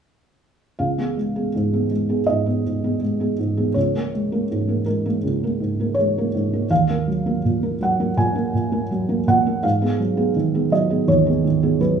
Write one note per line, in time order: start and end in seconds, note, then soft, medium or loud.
0.79 0.98 C#2 soft
0.79 2.24 F5 medium
0.98 1.15 B3 soft
0.98 1.15 G#4 soft
1.17 1.47 G#3 soft
1.36 1.53 B3 soft
1.36 1.52 G#4 soft
1.55 1.84 G#2 soft
1.73 1.90 B3 soft
1.73 1.90 G#4 soft
1.91 2.21 G#3 soft
2.09 2.26 B3 soft
2.09 2.26 G#4 soft
2.27 2.47 G#2 soft
2.27 3.71 D#5 medium
2.46 2.63 B3 soft
2.46 2.63 G#4 soft
2.65 2.94 G#2 soft
2.84 3.00 B3 soft
2.84 3.00 G#4 soft
3.01 3.31 G#3 soft
3.20 3.37 B3 soft
3.20 3.37 G#4 soft
3.39 3.69 G#2 soft
3.57 3.74 B3 soft
3.57 3.74 G#4 soft
3.74 3.93 C#2 soft
3.74 4.82 C#5 soft
3.95 4.11 A#3 soft
3.95 4.11 A#4 soft
4.14 4.43 G#3 soft
4.32 4.48 A#3 soft
4.32 4.48 A#4 soft
4.51 4.80 G#2 soft
4.68 4.84 A#3 soft
4.68 4.84 A#4 soft
4.86 5.16 G#3 soft
4.86 5.04 A#4 medium
5.06 5.22 A#3 soft
5.06 5.22 A#4 soft
5.24 5.41 C#2 soft
5.44 5.59 A#3 soft
5.44 5.59 A#4 soft
5.60 5.89 G#2 soft
5.80 5.95 A#3 soft
5.80 5.96 A#4 soft
5.94 6.65 C#5 medium
5.99 6.27 G#3 soft
6.18 6.33 A#3 soft
6.18 6.33 A#4 soft
6.35 6.63 G#2 soft
6.53 6.69 A#3 soft
6.53 6.69 A#4 soft
6.70 6.88 D#2 soft
6.70 7.77 F5 medium
6.90 7.06 A#3 soft
6.90 7.06 A#4 soft
7.08 7.37 F#3 soft
7.26 7.42 A#3 soft
7.26 7.42 A#4 soft
7.45 7.74 A#2 soft
7.63 7.79 A#3 soft
7.63 7.79 A#4 soft
7.81 8.10 F#3 soft
7.81 8.16 F#5 medium
8.00 8.16 A#3 soft
8.00 8.16 A#4 soft
8.17 8.35 A#2 soft
8.17 9.23 G#5 medium
8.35 8.52 A#3 soft
8.35 8.52 A#4 soft
8.54 8.83 A#2 soft
8.72 8.88 A#3 soft
8.72 8.89 A#4 soft
8.91 9.20 F#3 soft
9.09 9.25 A#3 soft
9.09 9.25 A#4 soft
9.27 9.56 A#2 soft
9.27 9.62 F#5 medium
9.47 9.63 A#3 soft
9.47 9.63 A#4 soft
9.63 9.81 G#2 soft
9.63 10.69 F5 medium
9.82 9.98 B3 soft
9.82 9.98 G#4 soft
10.00 10.29 F#3 soft
10.17 10.34 B3 soft
10.17 10.34 G#4 soft
10.36 10.66 D#3 soft
10.54 10.71 B3 soft
10.54 10.72 G#4 soft
10.72 11.02 F#3 soft
10.72 11.07 D#5 medium
10.90 11.07 B3 soft
10.90 11.08 G#4 soft
11.08 11.27 D#2 soft
11.08 11.78 C#5 medium
11.26 11.44 B3 soft
11.26 11.44 G#4 soft
11.45 11.75 D#3 soft
11.63 11.80 B3 soft
11.63 11.80 G#4 soft
11.81 12.00 F#3 soft
11.81 12.00 B4 medium